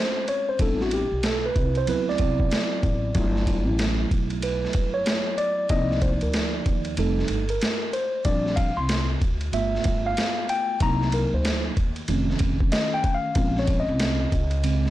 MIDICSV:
0, 0, Header, 1, 4, 480
1, 0, Start_track
1, 0, Tempo, 638298
1, 447, Time_signature, 4, 2, 24, 8
1, 11206, End_track
2, 0, Start_track
2, 0, Title_t, "Tine electric piano"
2, 0, Program_c, 0, 4
2, 0, Note_on_c, 0, 56, 42
2, 0, Note_on_c, 0, 60, 53
2, 0, Note_on_c, 0, 61, 46
2, 0, Note_on_c, 0, 72, 87
2, 216, Note_on_c, 0, 73, 94
2, 219, Note_off_c, 0, 72, 0
2, 367, Note_off_c, 0, 73, 0
2, 368, Note_on_c, 0, 72, 86
2, 412, Note_off_c, 0, 61, 0
2, 415, Note_off_c, 0, 56, 0
2, 418, Note_off_c, 0, 60, 0
2, 446, Note_on_c, 0, 55, 55
2, 449, Note_on_c, 0, 59, 52
2, 454, Note_off_c, 0, 72, 0
2, 454, Note_on_c, 0, 60, 50
2, 459, Note_on_c, 0, 62, 53
2, 463, Note_on_c, 0, 69, 84
2, 611, Note_off_c, 0, 69, 0
2, 615, Note_on_c, 0, 66, 80
2, 698, Note_off_c, 0, 66, 0
2, 703, Note_on_c, 0, 67, 85
2, 789, Note_off_c, 0, 55, 0
2, 791, Note_off_c, 0, 59, 0
2, 793, Note_off_c, 0, 60, 0
2, 796, Note_off_c, 0, 62, 0
2, 942, Note_off_c, 0, 67, 0
2, 946, Note_on_c, 0, 69, 97
2, 1092, Note_off_c, 0, 69, 0
2, 1095, Note_on_c, 0, 71, 87
2, 1334, Note_off_c, 0, 71, 0
2, 1335, Note_on_c, 0, 72, 97
2, 1408, Note_on_c, 0, 54, 51
2, 1412, Note_on_c, 0, 59, 52
2, 1415, Note_on_c, 0, 60, 47
2, 1416, Note_on_c, 0, 64, 58
2, 1418, Note_off_c, 0, 72, 0
2, 1424, Note_on_c, 0, 71, 95
2, 1557, Note_off_c, 0, 71, 0
2, 1573, Note_on_c, 0, 74, 93
2, 2337, Note_off_c, 0, 54, 0
2, 2339, Note_off_c, 0, 59, 0
2, 2341, Note_off_c, 0, 60, 0
2, 2342, Note_off_c, 0, 64, 0
2, 2369, Note_on_c, 0, 54, 53
2, 2372, Note_on_c, 0, 57, 49
2, 2375, Note_on_c, 0, 59, 50
2, 2377, Note_on_c, 0, 64, 53
2, 2735, Note_off_c, 0, 74, 0
2, 3334, Note_on_c, 0, 71, 77
2, 3714, Note_on_c, 0, 73, 83
2, 3733, Note_off_c, 0, 71, 0
2, 4045, Note_on_c, 0, 74, 98
2, 4055, Note_off_c, 0, 73, 0
2, 4258, Note_off_c, 0, 54, 0
2, 4259, Note_off_c, 0, 57, 0
2, 4261, Note_off_c, 0, 59, 0
2, 4262, Note_off_c, 0, 64, 0
2, 4269, Note_off_c, 0, 74, 0
2, 4287, Note_on_c, 0, 75, 104
2, 4289, Note_on_c, 0, 53, 54
2, 4292, Note_on_c, 0, 58, 47
2, 4295, Note_on_c, 0, 74, 49
2, 4298, Note_on_c, 0, 63, 57
2, 4510, Note_off_c, 0, 75, 0
2, 4527, Note_on_c, 0, 72, 80
2, 4595, Note_off_c, 0, 72, 0
2, 4681, Note_on_c, 0, 70, 59
2, 4903, Note_off_c, 0, 70, 0
2, 5218, Note_off_c, 0, 53, 0
2, 5219, Note_off_c, 0, 58, 0
2, 5221, Note_off_c, 0, 74, 0
2, 5222, Note_off_c, 0, 63, 0
2, 5247, Note_on_c, 0, 55, 52
2, 5247, Note_on_c, 0, 57, 52
2, 5255, Note_on_c, 0, 63, 56
2, 5259, Note_on_c, 0, 69, 75
2, 5590, Note_off_c, 0, 55, 0
2, 5590, Note_off_c, 0, 57, 0
2, 5594, Note_off_c, 0, 63, 0
2, 5641, Note_on_c, 0, 70, 73
2, 5656, Note_off_c, 0, 69, 0
2, 5966, Note_on_c, 0, 72, 89
2, 5978, Note_off_c, 0, 70, 0
2, 6189, Note_off_c, 0, 72, 0
2, 6200, Note_on_c, 0, 55, 53
2, 6204, Note_on_c, 0, 74, 89
2, 6205, Note_on_c, 0, 60, 46
2, 6208, Note_on_c, 0, 62, 63
2, 6429, Note_off_c, 0, 74, 0
2, 6438, Note_on_c, 0, 77, 92
2, 6546, Note_off_c, 0, 55, 0
2, 6549, Note_off_c, 0, 60, 0
2, 6551, Note_off_c, 0, 62, 0
2, 6595, Note_on_c, 0, 84, 86
2, 6598, Note_off_c, 0, 77, 0
2, 6820, Note_off_c, 0, 84, 0
2, 7162, Note_on_c, 0, 57, 56
2, 7170, Note_on_c, 0, 59, 51
2, 7172, Note_on_c, 0, 65, 63
2, 7173, Note_on_c, 0, 76, 83
2, 7569, Note_on_c, 0, 77, 96
2, 7573, Note_off_c, 0, 76, 0
2, 7893, Note_on_c, 0, 79, 101
2, 7902, Note_off_c, 0, 77, 0
2, 8095, Note_off_c, 0, 57, 0
2, 8098, Note_off_c, 0, 59, 0
2, 8100, Note_off_c, 0, 65, 0
2, 8113, Note_off_c, 0, 79, 0
2, 8133, Note_on_c, 0, 54, 54
2, 8137, Note_on_c, 0, 58, 54
2, 8141, Note_on_c, 0, 63, 56
2, 8141, Note_on_c, 0, 82, 106
2, 8377, Note_on_c, 0, 70, 84
2, 8381, Note_off_c, 0, 82, 0
2, 8513, Note_off_c, 0, 70, 0
2, 8530, Note_on_c, 0, 72, 73
2, 8748, Note_off_c, 0, 72, 0
2, 8820, Note_off_c, 0, 54, 0
2, 8822, Note_off_c, 0, 58, 0
2, 8824, Note_off_c, 0, 63, 0
2, 9087, Note_on_c, 0, 51, 53
2, 9094, Note_on_c, 0, 57, 52
2, 9099, Note_on_c, 0, 61, 59
2, 9567, Note_on_c, 0, 75, 96
2, 9732, Note_off_c, 0, 75, 0
2, 9732, Note_on_c, 0, 79, 99
2, 9885, Note_on_c, 0, 77, 93
2, 9894, Note_off_c, 0, 79, 0
2, 10017, Note_off_c, 0, 51, 0
2, 10020, Note_off_c, 0, 57, 0
2, 10023, Note_off_c, 0, 61, 0
2, 10050, Note_on_c, 0, 61, 53
2, 10051, Note_on_c, 0, 56, 48
2, 10058, Note_on_c, 0, 60, 60
2, 10216, Note_off_c, 0, 77, 0
2, 10221, Note_on_c, 0, 73, 84
2, 10377, Note_on_c, 0, 75, 84
2, 10379, Note_off_c, 0, 73, 0
2, 10738, Note_off_c, 0, 61, 0
2, 10739, Note_off_c, 0, 56, 0
2, 10742, Note_off_c, 0, 60, 0
2, 11005, Note_on_c, 0, 49, 52
2, 11009, Note_on_c, 0, 56, 47
2, 11011, Note_on_c, 0, 60, 58
2, 11206, Note_off_c, 0, 49, 0
2, 11206, Note_off_c, 0, 56, 0
2, 11206, Note_off_c, 0, 60, 0
2, 11206, Note_off_c, 0, 75, 0
2, 11206, End_track
3, 0, Start_track
3, 0, Title_t, "Upright bass"
3, 0, Program_c, 1, 32
3, 448, Note_on_c, 1, 33, 103
3, 774, Note_off_c, 1, 33, 0
3, 839, Note_on_c, 1, 35, 75
3, 1113, Note_off_c, 1, 35, 0
3, 1174, Note_on_c, 1, 36, 92
3, 1371, Note_off_c, 1, 36, 0
3, 1407, Note_on_c, 1, 38, 89
3, 1607, Note_off_c, 1, 38, 0
3, 1650, Note_on_c, 1, 36, 89
3, 1849, Note_off_c, 1, 36, 0
3, 2132, Note_on_c, 1, 33, 91
3, 2330, Note_off_c, 1, 33, 0
3, 2370, Note_on_c, 1, 31, 124
3, 2759, Note_off_c, 1, 31, 0
3, 2759, Note_on_c, 1, 33, 78
3, 3033, Note_off_c, 1, 33, 0
3, 3093, Note_on_c, 1, 35, 90
3, 3491, Note_off_c, 1, 35, 0
3, 3570, Note_on_c, 1, 31, 73
3, 3769, Note_off_c, 1, 31, 0
3, 4287, Note_on_c, 1, 36, 104
3, 4613, Note_off_c, 1, 36, 0
3, 4677, Note_on_c, 1, 38, 77
3, 4952, Note_off_c, 1, 38, 0
3, 5010, Note_on_c, 1, 39, 96
3, 5249, Note_on_c, 1, 29, 105
3, 5260, Note_off_c, 1, 39, 0
3, 5448, Note_off_c, 1, 29, 0
3, 5488, Note_on_c, 1, 31, 80
3, 5688, Note_off_c, 1, 31, 0
3, 6208, Note_on_c, 1, 34, 98
3, 6534, Note_off_c, 1, 34, 0
3, 6598, Note_on_c, 1, 36, 74
3, 6872, Note_off_c, 1, 36, 0
3, 6932, Note_on_c, 1, 38, 90
3, 7130, Note_off_c, 1, 38, 0
3, 7163, Note_on_c, 1, 31, 87
3, 7365, Note_off_c, 1, 31, 0
3, 7411, Note_on_c, 1, 31, 94
3, 7609, Note_off_c, 1, 31, 0
3, 8127, Note_on_c, 1, 36, 105
3, 8453, Note_off_c, 1, 36, 0
3, 8519, Note_on_c, 1, 38, 81
3, 8793, Note_off_c, 1, 38, 0
3, 8854, Note_on_c, 1, 39, 88
3, 9051, Note_off_c, 1, 39, 0
3, 9089, Note_on_c, 1, 29, 105
3, 9288, Note_off_c, 1, 29, 0
3, 9329, Note_on_c, 1, 29, 91
3, 9528, Note_off_c, 1, 29, 0
3, 10046, Note_on_c, 1, 34, 119
3, 10373, Note_off_c, 1, 34, 0
3, 10440, Note_on_c, 1, 36, 92
3, 10714, Note_off_c, 1, 36, 0
3, 10772, Note_on_c, 1, 37, 94
3, 11170, Note_off_c, 1, 37, 0
3, 11206, End_track
4, 0, Start_track
4, 0, Title_t, "Drums"
4, 209, Note_on_c, 9, 51, 55
4, 284, Note_off_c, 9, 51, 0
4, 444, Note_on_c, 9, 51, 73
4, 447, Note_on_c, 9, 36, 99
4, 519, Note_off_c, 9, 51, 0
4, 522, Note_off_c, 9, 36, 0
4, 605, Note_on_c, 9, 38, 38
4, 680, Note_off_c, 9, 38, 0
4, 686, Note_on_c, 9, 51, 63
4, 762, Note_off_c, 9, 51, 0
4, 926, Note_on_c, 9, 44, 55
4, 926, Note_on_c, 9, 51, 74
4, 930, Note_on_c, 9, 38, 92
4, 1001, Note_off_c, 9, 44, 0
4, 1001, Note_off_c, 9, 51, 0
4, 1005, Note_off_c, 9, 38, 0
4, 1171, Note_on_c, 9, 36, 92
4, 1171, Note_on_c, 9, 51, 51
4, 1246, Note_off_c, 9, 51, 0
4, 1247, Note_off_c, 9, 36, 0
4, 1317, Note_on_c, 9, 51, 34
4, 1392, Note_off_c, 9, 51, 0
4, 1408, Note_on_c, 9, 51, 71
4, 1484, Note_off_c, 9, 51, 0
4, 1574, Note_on_c, 9, 38, 36
4, 1641, Note_on_c, 9, 51, 67
4, 1649, Note_off_c, 9, 38, 0
4, 1651, Note_on_c, 9, 36, 83
4, 1716, Note_off_c, 9, 51, 0
4, 1726, Note_off_c, 9, 36, 0
4, 1802, Note_on_c, 9, 36, 93
4, 1877, Note_off_c, 9, 36, 0
4, 1891, Note_on_c, 9, 44, 53
4, 1891, Note_on_c, 9, 51, 77
4, 1900, Note_on_c, 9, 38, 122
4, 1966, Note_off_c, 9, 44, 0
4, 1966, Note_off_c, 9, 51, 0
4, 1975, Note_off_c, 9, 38, 0
4, 2130, Note_on_c, 9, 36, 88
4, 2130, Note_on_c, 9, 51, 50
4, 2205, Note_off_c, 9, 36, 0
4, 2205, Note_off_c, 9, 51, 0
4, 2366, Note_on_c, 9, 51, 71
4, 2370, Note_on_c, 9, 36, 118
4, 2442, Note_off_c, 9, 51, 0
4, 2445, Note_off_c, 9, 36, 0
4, 2526, Note_on_c, 9, 38, 38
4, 2602, Note_off_c, 9, 38, 0
4, 2609, Note_on_c, 9, 36, 80
4, 2610, Note_on_c, 9, 51, 66
4, 2684, Note_off_c, 9, 36, 0
4, 2685, Note_off_c, 9, 51, 0
4, 2850, Note_on_c, 9, 44, 54
4, 2850, Note_on_c, 9, 51, 81
4, 2854, Note_on_c, 9, 38, 97
4, 2925, Note_off_c, 9, 44, 0
4, 2925, Note_off_c, 9, 51, 0
4, 2929, Note_off_c, 9, 38, 0
4, 3093, Note_on_c, 9, 36, 93
4, 3094, Note_on_c, 9, 51, 53
4, 3168, Note_off_c, 9, 36, 0
4, 3170, Note_off_c, 9, 51, 0
4, 3236, Note_on_c, 9, 51, 37
4, 3311, Note_off_c, 9, 51, 0
4, 3327, Note_on_c, 9, 51, 70
4, 3402, Note_off_c, 9, 51, 0
4, 3495, Note_on_c, 9, 38, 37
4, 3558, Note_on_c, 9, 51, 67
4, 3570, Note_off_c, 9, 38, 0
4, 3570, Note_on_c, 9, 36, 91
4, 3633, Note_off_c, 9, 51, 0
4, 3645, Note_off_c, 9, 36, 0
4, 3805, Note_on_c, 9, 44, 53
4, 3805, Note_on_c, 9, 51, 71
4, 3813, Note_on_c, 9, 38, 116
4, 3880, Note_off_c, 9, 44, 0
4, 3880, Note_off_c, 9, 51, 0
4, 3889, Note_off_c, 9, 38, 0
4, 4046, Note_on_c, 9, 51, 50
4, 4121, Note_off_c, 9, 51, 0
4, 4281, Note_on_c, 9, 51, 68
4, 4286, Note_on_c, 9, 36, 109
4, 4356, Note_off_c, 9, 51, 0
4, 4361, Note_off_c, 9, 36, 0
4, 4444, Note_on_c, 9, 38, 37
4, 4519, Note_off_c, 9, 38, 0
4, 4525, Note_on_c, 9, 36, 83
4, 4525, Note_on_c, 9, 51, 62
4, 4600, Note_off_c, 9, 51, 0
4, 4601, Note_off_c, 9, 36, 0
4, 4670, Note_on_c, 9, 51, 41
4, 4745, Note_off_c, 9, 51, 0
4, 4764, Note_on_c, 9, 44, 60
4, 4764, Note_on_c, 9, 51, 77
4, 4768, Note_on_c, 9, 38, 95
4, 4839, Note_off_c, 9, 44, 0
4, 4839, Note_off_c, 9, 51, 0
4, 4843, Note_off_c, 9, 38, 0
4, 5007, Note_on_c, 9, 51, 51
4, 5009, Note_on_c, 9, 36, 85
4, 5082, Note_off_c, 9, 51, 0
4, 5084, Note_off_c, 9, 36, 0
4, 5149, Note_on_c, 9, 51, 39
4, 5225, Note_off_c, 9, 51, 0
4, 5242, Note_on_c, 9, 51, 69
4, 5317, Note_off_c, 9, 51, 0
4, 5407, Note_on_c, 9, 38, 38
4, 5474, Note_on_c, 9, 51, 63
4, 5482, Note_off_c, 9, 38, 0
4, 5550, Note_off_c, 9, 51, 0
4, 5631, Note_on_c, 9, 51, 45
4, 5706, Note_off_c, 9, 51, 0
4, 5726, Note_on_c, 9, 44, 54
4, 5726, Note_on_c, 9, 51, 75
4, 5735, Note_on_c, 9, 38, 109
4, 5802, Note_off_c, 9, 44, 0
4, 5802, Note_off_c, 9, 51, 0
4, 5810, Note_off_c, 9, 38, 0
4, 5967, Note_on_c, 9, 51, 53
4, 6042, Note_off_c, 9, 51, 0
4, 6202, Note_on_c, 9, 51, 71
4, 6206, Note_on_c, 9, 36, 102
4, 6277, Note_off_c, 9, 51, 0
4, 6281, Note_off_c, 9, 36, 0
4, 6363, Note_on_c, 9, 38, 35
4, 6438, Note_off_c, 9, 38, 0
4, 6444, Note_on_c, 9, 51, 68
4, 6445, Note_on_c, 9, 36, 96
4, 6519, Note_off_c, 9, 51, 0
4, 6521, Note_off_c, 9, 36, 0
4, 6685, Note_on_c, 9, 44, 55
4, 6685, Note_on_c, 9, 51, 81
4, 6689, Note_on_c, 9, 38, 94
4, 6760, Note_off_c, 9, 44, 0
4, 6760, Note_off_c, 9, 51, 0
4, 6764, Note_off_c, 9, 38, 0
4, 6930, Note_on_c, 9, 36, 92
4, 6930, Note_on_c, 9, 51, 53
4, 7005, Note_off_c, 9, 36, 0
4, 7005, Note_off_c, 9, 51, 0
4, 7075, Note_on_c, 9, 51, 38
4, 7150, Note_off_c, 9, 51, 0
4, 7168, Note_on_c, 9, 51, 63
4, 7243, Note_off_c, 9, 51, 0
4, 7333, Note_on_c, 9, 38, 35
4, 7400, Note_on_c, 9, 51, 68
4, 7408, Note_off_c, 9, 38, 0
4, 7410, Note_on_c, 9, 36, 89
4, 7475, Note_off_c, 9, 51, 0
4, 7485, Note_off_c, 9, 36, 0
4, 7648, Note_on_c, 9, 44, 59
4, 7648, Note_on_c, 9, 51, 74
4, 7657, Note_on_c, 9, 38, 112
4, 7723, Note_off_c, 9, 44, 0
4, 7723, Note_off_c, 9, 51, 0
4, 7732, Note_off_c, 9, 38, 0
4, 7890, Note_on_c, 9, 51, 60
4, 7965, Note_off_c, 9, 51, 0
4, 8124, Note_on_c, 9, 51, 68
4, 8127, Note_on_c, 9, 36, 100
4, 8199, Note_off_c, 9, 51, 0
4, 8202, Note_off_c, 9, 36, 0
4, 8284, Note_on_c, 9, 38, 40
4, 8359, Note_off_c, 9, 38, 0
4, 8365, Note_on_c, 9, 51, 64
4, 8440, Note_off_c, 9, 51, 0
4, 8609, Note_on_c, 9, 44, 54
4, 8609, Note_on_c, 9, 51, 74
4, 8613, Note_on_c, 9, 38, 100
4, 8684, Note_off_c, 9, 44, 0
4, 8684, Note_off_c, 9, 51, 0
4, 8688, Note_off_c, 9, 38, 0
4, 8850, Note_on_c, 9, 51, 50
4, 8851, Note_on_c, 9, 36, 92
4, 8925, Note_off_c, 9, 51, 0
4, 8926, Note_off_c, 9, 36, 0
4, 8995, Note_on_c, 9, 51, 37
4, 9070, Note_off_c, 9, 51, 0
4, 9084, Note_on_c, 9, 51, 70
4, 9159, Note_off_c, 9, 51, 0
4, 9250, Note_on_c, 9, 38, 39
4, 9318, Note_on_c, 9, 51, 65
4, 9325, Note_off_c, 9, 38, 0
4, 9329, Note_on_c, 9, 36, 88
4, 9393, Note_off_c, 9, 51, 0
4, 9404, Note_off_c, 9, 36, 0
4, 9479, Note_on_c, 9, 36, 102
4, 9554, Note_off_c, 9, 36, 0
4, 9565, Note_on_c, 9, 44, 57
4, 9565, Note_on_c, 9, 51, 81
4, 9573, Note_on_c, 9, 38, 126
4, 9640, Note_off_c, 9, 44, 0
4, 9640, Note_off_c, 9, 51, 0
4, 9649, Note_off_c, 9, 38, 0
4, 9805, Note_on_c, 9, 51, 49
4, 9806, Note_on_c, 9, 36, 85
4, 9880, Note_off_c, 9, 51, 0
4, 9881, Note_off_c, 9, 36, 0
4, 10040, Note_on_c, 9, 51, 73
4, 10045, Note_on_c, 9, 36, 110
4, 10115, Note_off_c, 9, 51, 0
4, 10120, Note_off_c, 9, 36, 0
4, 10202, Note_on_c, 9, 38, 36
4, 10277, Note_off_c, 9, 38, 0
4, 10283, Note_on_c, 9, 51, 64
4, 10285, Note_on_c, 9, 36, 93
4, 10358, Note_off_c, 9, 51, 0
4, 10360, Note_off_c, 9, 36, 0
4, 10524, Note_on_c, 9, 44, 57
4, 10524, Note_on_c, 9, 51, 78
4, 10528, Note_on_c, 9, 38, 95
4, 10600, Note_off_c, 9, 44, 0
4, 10600, Note_off_c, 9, 51, 0
4, 10604, Note_off_c, 9, 38, 0
4, 10770, Note_on_c, 9, 36, 87
4, 10770, Note_on_c, 9, 51, 55
4, 10845, Note_off_c, 9, 36, 0
4, 10846, Note_off_c, 9, 51, 0
4, 10910, Note_on_c, 9, 51, 38
4, 10985, Note_off_c, 9, 51, 0
4, 11006, Note_on_c, 9, 51, 73
4, 11082, Note_off_c, 9, 51, 0
4, 11173, Note_on_c, 9, 38, 35
4, 11206, Note_off_c, 9, 38, 0
4, 11206, End_track
0, 0, End_of_file